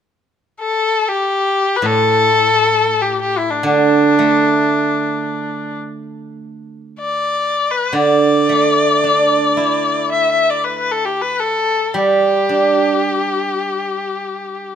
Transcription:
0.60 erhu A4
1.08 erhu G4
1.77 erhu B4
1.82 guzheng A2
1.86 erhu A4
3.02 erhu G4
3.21 erhu G4
3.38 erhu E4
3.51 erhu D4
3.63 guzheng D3, erhu D4
4.19 guzheng A3
7.00 erhu D5
7.71 erhu B4
7.93 guzheng D3, erhu D5
8.49 guzheng A3
9.04 guzheng D4
9.57 guzheng E4
10.12 erhu E5
10.32 erhu E5
10.50 erhu D5
10.65 erhu B4
10.78 erhu B4
10.92 erhu A4
11.05 erhu G4
11.22 erhu B4
11.40 erhu A4
11.94 guzheng G3, erhu G4
12.49 guzheng D4

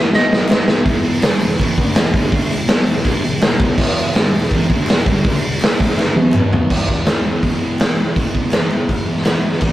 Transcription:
Already playing: distorted electric guitar A2 E3 A3
0.13 distorted electric guitar B2 F#3 B3, electric slide guitar D#5, snare
0.33 distorted electric guitar B2 F#3 B3, snare
0.48 distorted electric guitar B2 F#3 B3, snare, clap
0.68 distorted electric guitar B2 F#3 B3, snare
0.86 distorted electric guitar E2 B2 E3, kick, open hi-hat
1.05 open hi-hat
1.22 distorted electric guitar G2 D3 G3, snare, clap, open hi-hat
1.32 snare
1.40 distorted electric guitar E2 B2, open hi-hat
1.52 snare
1.59 distorted electric guitar E2 B2 E3, kick, clap, open hi-hat
1.78 distorted electric guitar D3 A3 D4, kick, open hi-hat
1.95 distorted electric guitar E2 B2, snare, clap, open hi-hat
2.14 distorted electric guitar G2 D3 G3, kick, open hi-hat
2.32 distorted electric guitar D3 A3 D4, kick, open hi-hat
2.51 distorted electric guitar E2 B2, open hi-hat
2.68 distorted electric guitar B2 F#3 B3, snare, clap, open hi-hat
2.79 snare
2.86 distorted electric guitar E2 B2, open hi-hat
2.97 snare
3.04 distorted electric guitar D3 A3 D4, kick, clap, open hi-hat
3.24 distorted electric guitar E2 B2, open hi-hat
3.40 distorted electric guitar E2 B2, snare, clap, open hi-hat
3.59 distorted electric guitar E2 B2 E3, kick, open hi-hat
3.77 distorted electric guitar E2 B2 E3, kick, crash
3.96 open hi-hat
4.14 distorted electric guitar G2 D3 G3, snare, clap, open hi-hat
4.26 snare
4.33 distorted electric guitar E2 B2, open hi-hat
4.43 snare
4.51 distorted electric guitar E2 B2 E3, kick, clap, open hi-hat
4.70 distorted electric guitar D3 A3 D4, kick, open hi-hat
4.87 distorted electric guitar E2 B2, snare, clap, open hi-hat
5.06 distorted electric guitar G2 D3 G3, kick, open hi-hat
5.25 distorted electric guitar D3 A3 D4, kick, open hi-hat
5.44 distorted electric guitar E2 B2, open hi-hat
5.59 distorted electric guitar B2 F#3, clap, open hi-hat
5.64 distorted electric guitar B3, snare
5.73 snare
5.79 distorted electric guitar A2 E3 A3, kick, open hi-hat
5.91 snare
5.97 distorted electric guitar D3 A3 D4, snare, clap
6.16 distorted electric guitar B2 F#3 B3, high tom
6.33 clap, mid tom
6.53 floor tom
6.70 distorted electric guitar E2 B2, kick, crash
6.74 distorted electric guitar E3
6.88 kick
7.06 distorted electric guitar E2 B2, snare, clap, open hi-hat
7.10 distorted electric guitar E3
7.26 distorted electric guitar B2 E3
7.43 distorted electric guitar E2, kick, open hi-hat
7.47 distorted electric guitar B2 E3
7.61 distorted electric guitar B2 E3
7.79 snare, clap, open hi-hat
7.97 distorted electric guitar B2 E3
8.15 distorted electric guitar E2 B2 E3, kick, open hi-hat
8.35 kick
8.51 distorted electric guitar E2 B2 E3, snare, clap, open hi-hat
8.70 distorted electric guitar E3, clap
8.74 distorted electric guitar B2
8.88 distorted electric guitar E2 B2 E3, kick, open hi-hat
9.07 distorted electric guitar E3
9.11 distorted electric guitar B2
9.17 snare
9.25 snare, clap, open hi-hat
9.45 distorted electric guitar B2 E3
9.53 snare
9.61 distorted electric guitar E2 B2, kick, crash
9.66 distorted electric guitar E3

